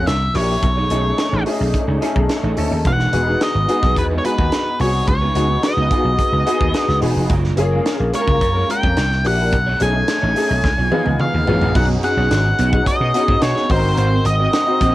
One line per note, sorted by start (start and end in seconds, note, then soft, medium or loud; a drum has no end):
0.07 0.28 C2 medium
0.07 0.36 E5 medium
0.07 muted clean electric guitar stroke soft
0.07 snare medium
0.07 closed hi-hat medium
0.21 muted clean electric guitar stroke soft
0.34 0.56 A#1 medium
0.34 0.62 A#3 medium
0.34 0.63 D4 medium
0.34 0.63 E4 medium
0.34 0.63 G4 medium
0.34 1.42 C#5 medium
0.34 open hi-hat medium
0.48 muted clean electric guitar stroke soft
0.62 0.83 B1 loud
0.62 muted clean electric guitar stroke soft
0.62 kick loud
0.62 closed hi-hat medium
0.76 0.89 A3 medium
0.76 0.90 D#4 medium
0.76 0.90 G#4 medium
0.76 0.91 C#5 medium
0.90 1.11 B1 medium
0.90 1.05 A3 medium
0.90 1.39 A3 medium
0.90 1.39 C#4 medium
0.90 1.04 D#4 medium
0.90 1.40 D#4 medium
0.90 1.40 G#4 medium
0.90 1.04 G#4 medium
0.90 1.03 C#5 medium
0.90 closed hi-hat medium
1.04 muted clean electric guitar stroke soft
1.18 muted clean electric guitar stroke soft
1.18 snare loud
1.18 closed hi-hat medium
1.32 1.43 A1 medium
1.32 1.44 A3 medium
1.32 1.45 D#4 medium
1.32 1.46 G#4 medium
1.32 1.46 C#5 medium
1.45 1.61 A3 medium
1.45 1.95 A3 medium
1.45 1.95 C#4 medium
1.45 1.53 D4 medium
1.45 1.59 D#4 medium
1.45 1.59 G#4 medium
1.45 1.96 G#4 loud
1.45 1.58 C#5 medium
1.45 open hi-hat medium
1.53 1.98 D#4 medium
1.59 1.71 B1 medium
1.59 muted clean electric guitar stroke soft
1.73 muted clean electric guitar stroke soft
1.73 kick medium
1.73 closed hi-hat medium
1.87 1.98 C#2 medium
1.87 2.00 A3 soft
1.87 2.00 D#4 medium
1.87 2.01 G#4 medium
1.87 2.02 C#5 medium
2.01 2.50 A3 medium
2.01 2.20 A3 medium
2.01 2.50 C#4 medium
2.01 2.51 D#4 medium
2.01 2.15 D#4 medium
2.01 2.51 G#4 loud
2.01 2.14 G#4 medium
2.01 2.14 C#5 medium
2.01 closed hi-hat medium
2.15 2.26 B1 medium
2.15 muted clean electric guitar stroke soft
2.15 kick medium
2.29 muted clean electric guitar stroke soft
2.29 snare medium
2.29 closed hi-hat medium
2.43 2.54 A1 medium
2.43 2.56 A3 medium
2.43 2.56 D#4 medium
2.43 2.56 G#4 medium
2.43 2.57 C#5 medium
2.57 2.68 D2 medium
2.57 2.85 A3 medium
2.57 2.85 C#4 medium
2.57 2.85 D#4 medium
2.57 2.85 A4 loud
2.57 muted clean electric guitar stroke soft
2.57 open hi-hat medium
2.71 2.82 D#2 medium
2.71 muted clean electric guitar stroke soft
2.85 3.06 E1 loud
2.85 3.11 G#3 medium
2.85 3.11 D#4 medium
2.85 3.11 F#4 medium
2.85 3.11 B4 medium
2.85 3.43 F#5 loud
2.85 kick loud
2.85 closed hi-hat medium
2.99 snare soft
3.12 3.34 E1 medium
3.12 3.62 B3 medium
3.12 3.62 D#4 medium
3.12 3.62 F#4 medium
3.12 3.62 G#4 medium
3.12 muted clean electric guitar stroke soft
3.12 closed hi-hat medium
3.26 3.39 G#3 soft
3.26 3.40 D#4 soft
3.26 3.40 F#4 medium
3.26 3.40 B4 medium
3.40 3.94 D#5 medium
3.40 muted clean electric guitar stroke soft
3.40 snare loud
3.40 closed hi-hat medium
3.54 3.65 G#1 medium
3.54 muted clean electric guitar stroke soft
3.68 3.87 G#3 medium
3.68 4.17 B3 medium
3.68 4.17 D#4 medium
3.68 3.82 D#4 medium
3.68 4.18 F#4 medium
3.68 3.81 F#4 medium
3.68 4.18 G#4 medium
3.68 3.81 B4 medium
3.68 closed hi-hat medium
3.82 3.93 B1 medium
3.82 muted clean electric guitar stroke soft
3.82 kick medium
3.82 snare soft
3.96 4.17 E2 loud
3.96 4.04 B4 medium
3.96 muted clean electric guitar stroke soft
3.96 kick medium
3.96 closed hi-hat medium
4.10 4.23 G#3 medium
4.10 4.23 D#4 medium
4.10 4.24 F#4 medium
4.10 4.25 B4 medium
4.18 4.25 C#5 medium
4.24 4.39 G#3 medium
4.24 4.73 B3 medium
4.24 4.73 D#4 medium
4.24 4.38 D#4 medium
4.24 4.73 F#4 medium
4.24 4.37 F#4 medium
4.24 4.74 G#4 medium
4.24 4.81 B4 medium
4.24 4.37 B4 medium
4.24 closed hi-hat medium
4.38 4.49 D#2 medium
4.38 muted clean electric guitar stroke soft
4.38 kick medium
4.52 muted clean electric guitar stroke soft
4.52 snare medium
4.52 closed hi-hat medium
4.65 muted clean electric guitar stroke soft
4.79 5.01 C2 medium
4.79 5.08 B3 medium
4.79 5.08 D#4 medium
4.79 5.08 F#4 medium
4.79 5.08 G#4 medium
4.79 5.06 C#5 medium
4.79 open hi-hat medium
4.93 muted clean electric guitar stroke soft
5.07 5.28 C#2 loud
5.07 5.64 C#5 medium
5.07 muted clean electric guitar stroke soft
5.07 kick loud
5.07 closed hi-hat medium
5.21 5.34 B3 medium
5.21 5.35 D#4 medium
5.21 5.36 F#4 medium
5.21 5.36 B4 medium
5.35 5.56 C#2 loud
5.35 5.84 B3 medium
5.35 5.50 B3 medium
5.35 5.84 D#4 medium
5.35 5.49 D#4 medium
5.35 5.84 F#4 medium
5.35 5.49 F#4 medium
5.35 5.85 G#4 medium
5.35 5.48 B4 medium
5.35 closed hi-hat medium
5.49 muted clean electric guitar stroke soft
5.63 6.99 D#5 medium
5.63 muted clean electric guitar stroke soft
5.63 snare loud
5.63 closed hi-hat medium
5.77 5.87 C#2 medium
5.77 5.89 B3 medium
5.77 5.90 D#4 medium
5.77 5.91 F#4 medium
5.77 5.91 B4 medium
5.90 6.40 B3 medium
5.90 6.06 B3 medium
5.90 6.40 D#4 medium
5.90 6.05 D#4 medium
5.90 5.98 F4 medium
5.90 6.05 F#4 medium
5.90 6.40 G#4 medium
5.90 6.04 B4 medium
5.90 kick medium
5.90 closed hi-hat medium
5.97 6.43 F#4 medium
6.04 6.15 B1 medium
6.04 muted clean electric guitar stroke soft
6.19 muted clean electric guitar stroke soft
6.19 kick medium
6.19 closed hi-hat medium
6.32 6.43 C#2 medium
6.32 6.45 B3 medium
6.32 6.46 D#4 soft
6.32 6.46 F#4 medium
6.32 6.47 B4 medium
6.46 6.95 B3 medium
6.46 6.65 B3 medium
6.46 6.96 D#4 medium
6.46 6.60 D#4 medium
6.46 6.96 F#4 medium
6.46 6.60 F#4 loud
6.46 6.96 G#4 loud
6.46 6.59 B4 medium
6.46 closed hi-hat medium
6.60 6.71 D#2 medium
6.60 muted clean electric guitar stroke soft
6.60 kick medium
6.74 muted clean electric guitar stroke soft
6.74 snare loud
6.74 closed hi-hat medium
6.88 6.99 C#2 medium
6.88 muted clean electric guitar stroke soft
6.88 snare soft
7.01 7.13 E1 medium
7.01 7.29 B3 medium
7.01 7.16 B3 medium
7.01 7.30 D#4 medium
7.01 7.16 D#4 loud
7.01 7.30 F#4 medium
7.01 7.15 F#4 medium
7.01 7.30 G#4 medium
7.01 7.14 B4 medium
7.01 open hi-hat medium
7.16 7.26 F1 medium
7.16 7.29 B3 medium
7.16 7.30 D#4 medium
7.16 7.30 F#4 medium
7.16 7.31 B4 medium
7.29 7.51 F#1 loud
7.29 7.55 G#3 medium
7.29 7.56 C#4 medium
7.29 7.56 F4 medium
7.29 7.56 A#4 medium
7.29 kick loud
7.29 closed hi-hat medium
7.44 snare soft
7.57 7.78 F#1 medium
7.57 8.06 A#3 loud
7.57 8.07 C#4 medium
7.57 8.07 F4 medium
7.57 8.07 G#4 loud
7.57 muted clean electric guitar stroke soft
7.57 closed hi-hat medium
7.71 7.84 G#3 soft
7.71 7.85 C#4 medium
7.71 7.85 F4 medium
7.71 7.85 A#4 medium
7.85 muted clean electric guitar stroke soft
7.85 snare loud
7.85 closed hi-hat medium
7.99 8.10 A#1 medium
7.99 muted clean electric guitar stroke soft
8.13 8.32 G#3 medium
8.13 8.62 A#3 medium
8.13 8.62 C#4 medium
8.13 8.27 C#4 medium
8.13 8.63 F4 medium
8.13 8.27 F4 medium
8.13 8.20 G#4 medium
8.13 8.26 A#4 medium
8.13 8.72 C#5 medium
8.13 closed hi-hat medium
8.21 8.66 A#4 loud
8.27 8.38 C#2 medium
8.27 muted clean electric guitar stroke soft
8.27 kick medium
8.41 8.62 F#2 loud
8.41 muted clean electric guitar stroke soft
8.41 kick medium
8.41 closed hi-hat medium
8.55 8.67 G#3 medium
8.55 8.68 C#4 medium
8.55 8.68 F4 medium
8.55 8.69 A#4 medium
8.68 8.84 G#3 medium
8.68 8.97 A#3 medium
8.68 8.97 C#4 medium
8.68 8.83 C#4 medium
8.68 8.97 F4 medium
8.68 8.82 F4 medium
8.68 8.97 A#4 medium
8.68 8.82 A#4 medium
8.68 9.27 G5 loud
8.68 closed hi-hat medium
8.83 8.94 F2 medium
8.83 muted clean electric guitar stroke soft
8.83 kick medium
8.96 9.25 C2 loud
8.96 muted clean electric guitar stroke soft
8.96 snare medium
8.96 closed hi-hat medium
9.11 muted clean electric guitar stroke soft
9.11 snare soft
9.24 9.53 A#1 medium
9.24 9.52 A#3 medium
9.24 9.53 D4 medium
9.24 9.53 E4 medium
9.24 9.53 G4 medium
9.24 9.83 F#5 medium
9.24 open hi-hat medium
9.38 muted clean electric guitar stroke soft
9.52 9.73 B1 loud
9.52 muted clean electric guitar stroke soft
9.52 kick loud
9.52 closed hi-hat medium
9.66 9.79 A3 medium
9.66 9.80 D#4 medium
9.66 9.80 G#4 medium
9.66 9.81 C#5 loud
9.80 10.02 B1 loud
9.80 10.29 A3 medium
9.80 9.95 A3 medium
9.80 10.29 C#4 medium
9.80 10.29 D#4 medium
9.80 9.94 D#4 medium
9.80 10.30 G#4 medium
9.80 9.94 G#4 medium
9.80 9.93 C#5 medium
9.80 11.44 G#5 loud
9.80 closed hi-hat medium
9.94 muted clean electric guitar stroke soft
10.08 muted clean electric guitar stroke soft
10.08 snare loud
10.08 closed hi-hat loud
10.22 10.33 A1 medium
10.22 10.34 A3 medium
10.22 10.35 D#4 medium
10.22 10.36 G#4 medium
10.22 10.36 C#5 medium
10.36 10.51 A3 medium
10.36 10.64 A3 medium
10.36 10.64 C#4 medium
10.36 10.64 D#4 medium
10.36 10.50 D#4 medium
10.36 10.64 G#4 medium
10.36 10.49 G#4 medium
10.36 10.49 C#5 medium
10.36 open hi-hat medium
10.50 10.61 B1 medium
10.50 muted clean electric guitar stroke soft
10.64 10.74 C#2 loud
10.64 muted clean electric guitar stroke soft
10.64 kick medium
10.64 snare soft
10.77 10.89 B1 medium
10.77 10.90 B3 soft
10.77 10.91 F4 medium
10.77 10.91 G#4 medium
10.77 10.92 C#5 medium
10.91 11.40 B3 medium
10.91 11.10 B3 medium
10.91 11.40 D#4 medium
10.91 11.41 F4 medium
10.91 11.05 F4 medium
10.91 11.41 G#4 loud
10.91 11.05 G#4 medium
10.91 11.04 C#5 medium
10.91 high tom medium
11.05 11.17 C#2 medium
11.05 muted clean electric guitar stroke soft
11.05 high tom medium
11.19 11.76 F5 medium
11.19 muted clean electric guitar stroke soft
11.19 mid tom medium
11.33 11.44 D#2 medium
11.33 muted clean electric guitar stroke soft
11.47 11.58 A1 medium
11.47 11.75 B3 medium
11.47 11.61 B3 medium
11.47 11.74 D#4 medium
11.47 11.61 F4 medium
11.47 11.75 F4 medium
11.47 11.75 G#4 medium
11.47 11.60 G#4 medium
11.47 11.59 C#5 medium
11.47 floor tom medium
11.61 11.72 A#1 medium
11.61 11.73 B3 medium
11.61 11.75 F4 medium
11.61 11.75 G#4 medium
11.61 11.75 C#5 medium
11.61 floor tom medium
11.74 11.96 B1 loud
11.74 14.95 G#3 medium
11.74 11.94 B3 medium
11.74 13.68 B3 medium
11.74 11.99 C#4 medium
11.74 13.68 D#4 loud
11.74 11.89 D#4 medium
11.74 12.00 D#4 medium
11.74 12.00 F#4 medium
11.74 11.88 G#4 medium
11.74 12.00 G#4 medium
11.74 11.88 C#5 medium
11.74 11.84 F#5 loud
11.74 kick loud
11.74 crash medium
11.89 muted clean electric guitar stroke medium
12.03 12.64 C#4 medium
12.03 12.64 D#4 medium
12.03 12.65 F#4 medium
12.03 12.65 G#4 medium
12.03 12.89 F#5 medium
12.03 muted clean electric guitar stroke soft
12.03 closed hi-hat medium
12.17 12.27 B1 medium
12.17 12.30 B3 soft
12.17 12.30 D#4 medium
12.17 12.30 G#4 medium
12.17 12.31 C#5 medium
12.31 12.51 G#1 medium
12.31 muted clean electric guitar stroke soft
12.31 snare loud
12.31 closed hi-hat medium
12.45 muted clean electric guitar stroke soft
12.58 12.79 B1 medium
12.58 12.77 B3 medium
12.58 12.73 D#4 medium
12.58 12.72 G#4 medium
12.58 12.72 C#5 medium
12.58 closed hi-hat medium
12.72 13.09 C#4 medium
12.72 13.09 D#4 medium
12.72 13.09 F#4 medium
12.72 13.10 G#4 medium
12.72 muted clean electric guitar stroke soft
12.72 kick loud
12.86 13.42 D#5 medium
12.86 muted slap bass stroke soft
12.86 kick medium
12.86 closed hi-hat medium
13.00 13.11 B2 loud
13.00 muted clean electric guitar stroke soft
13.13 13.33 B3 medium
13.13 13.69 C#4 medium
13.13 13.68 D#4 medium
13.13 13.28 D#4 loud
13.13 13.69 F#4 medium
13.13 13.70 G#4 medium
13.13 13.27 G#4 medium
13.13 13.27 C#5 medium
13.13 closed hi-hat medium
13.28 13.39 G#2 medium
13.28 muted clean electric guitar stroke soft
13.28 kick medium
13.42 13.52 B2 loud
13.42 13.68 C#5 medium
13.42 muted clean electric guitar stroke soft
13.42 snare loud
13.42 closed hi-hat medium
13.55 13.69 B3 medium
13.55 13.69 D#4 medium
13.55 13.69 G#4 medium
13.55 13.70 C#5 medium
13.55 snare soft
13.69 13.84 G#1 loud
13.69 14.55 C4 medium
13.69 14.95 C4 medium
13.69 14.55 D#4 medium
13.69 14.95 F#4 medium
13.69 14.56 F#4 medium
13.69 14.56 A#4 medium
13.69 13.97 C5 medium
13.69 muted clean electric guitar stroke soft
13.69 kick loud
13.69 open hi-hat medium
13.83 13.94 G1 medium
13.83 muted clean electric guitar stroke soft
13.97 14.18 G#1 loud
13.97 14.16 C4 medium
13.97 14.11 F#4 medium
13.97 14.11 A#4 loud
13.97 14.26 C5 medium
13.97 14.11 F5 medium
13.97 closed hi-hat medium
14.11 muted clean electric guitar stroke soft
14.25 14.46 G#1 medium
14.25 14.95 D#5 medium
14.25 muted clean electric guitar stroke soft
14.25 closed hi-hat medium
14.39 14.52 C4 soft
14.39 14.53 F#4 medium
14.39 14.53 A#4 medium
14.39 14.53 D#5 medium
14.53 muted clean electric guitar stroke soft
14.53 snare loud
14.53 closed hi-hat medium
14.66 14.95 C4 medium
14.66 14.95 D#4 medium
14.66 14.95 F#4 medium
14.66 14.95 C5 medium
14.66 muted clean electric guitar stroke soft
14.81 14.95 A#1 medium
14.81 14.95 C4 medium
14.81 14.95 F#4 medium
14.81 14.94 A#4 medium
14.81 14.94 D#5 loud
14.81 kick loud
14.81 closed hi-hat medium